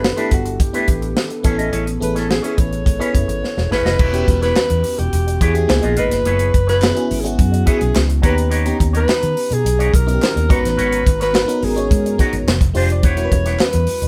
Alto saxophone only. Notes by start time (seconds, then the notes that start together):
Already playing: B4
0.33 F#4
0.62 G4
2.03 B4
2.18 A4
2.32 G#4
2.45 G#4
2.60 C#5
3.72 B4
4.43 B4
4.99 G4
5.42 G#4
5.99 B4
6.69 B4
7.20 G#4
7.26 F#4
7.68 G#4
8.26 B4
8.97 B4
9.53 G#4
9.95 A#4
10.52 B4
11.22 B4
11.64 G#4
12.77 C5
12.92 D5
13.06 C#5
13.62 B4